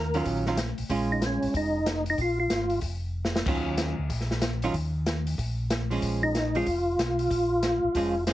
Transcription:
Already playing: D#2 A#4
0.14 D#3 F#3 C#4 F4, open hi-hat
0.25 A#1, kick, open hi-hat
0.46 D#3 F#3 C#4 F4, snare
0.57 snare, closed hi-hat
0.78 A#1, open hi-hat
0.89 A#1 G#3 C#4 F4, kick, open hi-hat
1.12 D#4
1.22 snare, closed hi-hat
1.26 C#4
1.42 A#1, open hi-hat
1.54 F1 D#4, kick, open hi-hat
1.86 snare, closed hi-hat
2.06 open hi-hat
2.10 D#4
2.18 A#1 F4, kick, open hi-hat
2.40 F4
2.50 G#1, snare, closed hi-hat
2.70 open hi-hat
2.81 F1, kick, open hi-hat
3.25 snare
3.36 snare
3.46 D#2 D#3 F#3 C#4 F4, kick, crash
3.78 snare, closed hi-hat
3.98 D2
4.09 A#1, kick, open hi-hat
4.21 snare
4.31 snare
4.42 snare, closed hi-hat
4.62 D#3 F#3 C#4 F4, open hi-hat
4.74 D#2, kick, open hi-hat
5.06 snare, closed hi-hat
5.27 open hi-hat
5.38 A#1, kick, open hi-hat
5.70 snare, closed hi-hat
5.90 F3 G#3 C#4, open hi-hat
6.02 A#1, kick, open hi-hat
6.23 D#4
6.35 snare, closed hi-hat
6.55 F3 G#3 C#4 F4, open hi-hat
6.66 F1, kick, open hi-hat
6.98 B1, snare, closed hi-hat
7.19 open hi-hat
7.30 A#1, kick, open hi-hat
7.63 snare, closed hi-hat
7.83 A#1
7.94 F1 F3 G#3 C#4, kick, open hi-hat
8.27 F3 G#3 C#4, snare, closed hi-hat

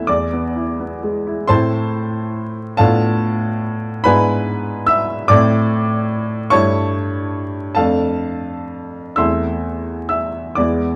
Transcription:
Already playing: E2 A3 B3 E4 A4 B4 E5
0.07 E2 D5 D6
0.33 B3
0.56 E4
0.80 B3
1.03 G#3
1.27 E4
1.48 A2 A3 C4 E4 C5 A5 C6
2.77 A2 B3 D4 F4 A4 F5 A5
4.04 G#2 B3 D4 E4 B4 G#5 B5
4.87 E5 E6
5.28 A2 A3 C4 E4 D5 D6
6.50 G2 A3 E4 C#5 A5 C#6
7.75 F2 A3 D4 A4 F5 A5
9.16 E2 A3 C4 E4 E5 C6 E6
10.09 E5 E6
10.55 E2 G#3 B3 E4 D5 D6

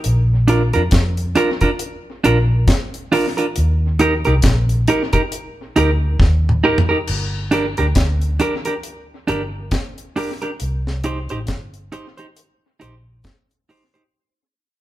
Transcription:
0.04 A#1, closed hi-hat
0.48 D4 F4 A#4, closed hi-hat
0.73 F2 D4 F4 A#4, closed hi-hat
0.91 F2, kick, snare, closed hi-hat
1.17 closed hi-hat
1.35 D4 F4 A#4, closed hi-hat
1.61 D4 F4 A#4, kick, closed hi-hat
1.79 closed hi-hat
2.24 A#1 D4 F4 A#4, closed hi-hat
2.68 kick, snare, closed hi-hat
2.94 closed hi-hat
3.12 D4 F4 A#4, open hi-hat
3.37 D4 F4 A#4, closed hi-hat
3.56 D#2, closed hi-hat
3.99 D#4 G4 A#4, closed hi-hat
4.25 C2 D#4 G4 A#4, closed hi-hat
4.42 A#1, kick, snare, closed hi-hat
4.69 closed hi-hat
4.88 D#4 G4 A#4, closed hi-hat
5.13 D#4 G4 A#4, kick, closed hi-hat
5.32 closed hi-hat
5.76 D2 D#4 G4 A#4, closed hi-hat
6.20 D#2, kick, snare
6.49 mid tom
6.64 D#4 G4 A#4
6.78 floor tom
6.89 D#4 G4 A#4
7.07 G1, crash
7.51 D4 G4 A#4, closed hi-hat
7.77 D2 D4 G4 A#4, closed hi-hat
7.95 D2, kick, snare, closed hi-hat
8.21 closed hi-hat
8.40 D4 G4 A#4, closed hi-hat
8.65 D4 G4 A#4, closed hi-hat
8.83 closed hi-hat
9.27 G1 D4 G4 A#4, closed hi-hat
9.71 kick, snare, closed hi-hat
9.98 closed hi-hat
10.16 D4 G4 A#4, open hi-hat
10.42 D4 G4 A#4, closed hi-hat
10.60 C2, closed hi-hat
10.87 snare
11.04 D#4 G4 C5, closed hi-hat
11.29 A1 D#4 G4 C5, closed hi-hat
11.47 G1, kick, snare, closed hi-hat
11.74 closed hi-hat
11.92 D#4 G4 C5, closed hi-hat
12.17 D#4 G4 C5, closed hi-hat
12.37 closed hi-hat
12.80 A#1 D#4 G4 C5, closed hi-hat
13.24 kick, snare, closed hi-hat
13.51 closed hi-hat
13.69 D#4 G4 C5, open hi-hat
13.94 D#4 G4 C5, closed hi-hat

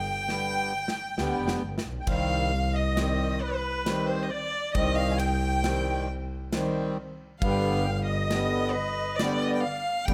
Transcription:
Already playing: G1 G5
0.28 D3 G3 B3, snare
0.88 snare
1.17 D2 D3 G3 B3, snare
1.41 F1
1.48 snare
1.64 G1
1.78 snare
1.86 B1
2.00 G5
2.07 C2 D#3 G3 C4 F5, kick, ride
2.68 F5
2.73 D#5
2.96 D#3 G3 C4, snare, ride
3.41 B4
3.85 D#3 G3 C4, snare, ride
4.07 C5
4.23 D#5
4.29 D5
4.73 C2 D#3 G3 C4 D#5, kick, ride
4.95 F5
5.11 G#5
5.18 G5, ride
5.64 D#3 G3 C4, snare, ride
6.52 D#3 G3 C4, snare, ride
7.40 G1 D3 G3 B3 F5, kick, ride
7.49 G5
7.57 F5
7.66 G5
7.75 F5
7.83 G5
7.90 F5
8.01 D#5 F5
8.09 D#5
8.30 D3 G3 B3, snare, ride
8.71 B4
9.16 D3 G3 D5, snare, ride
9.20 B3
9.25 C5
9.34 D5
9.38 D#5
9.55 G5
9.61 F5
10.05 G1 D3 G3 B3 G5, kick, ride

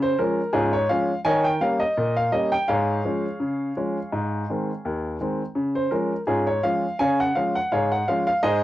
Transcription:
Already playing: C#3
0.02 C5
0.19 F3 G#3 C#4 A#4
0.53 G#2 C#4 F4 G#4
0.73 C#5
0.89 F3 G#3 C#4 F5
1.25 D#3 C#5 D#5 G#5
1.44 G5
1.61 G3 A#3 C#4 F5
1.80 D#5
1.97 A#2
2.17 F5
2.32 G3 A#3 C#4 D#5
2.52 G5
2.68 G#2 G#4 C#5 F5
3.05 F3 G#3 C#4
3.40 C#3
3.77 F3 G#3 C#4
4.13 G#2
4.50 D#3 G#3 C4
4.85 D#2
5.21 D#3 G#3 C4
5.55 C#3
5.75 C5
5.91 F3 G#3 C#4 A#4
6.27 G#2 C#4 F4 G#4
6.47 C#5
6.63 F3 G#3 C#4 F5
6.99 C#3 C#5 F5 G#5
7.20 F#5
7.35 F3 G#3 C#4 F5
7.55 F#5
7.72 G#2 G#4 C#5 F5
7.92 F#5
8.08 F3 G#3 C#4 F5
8.27 F5
8.43 G#2 G#4 C5 D#5

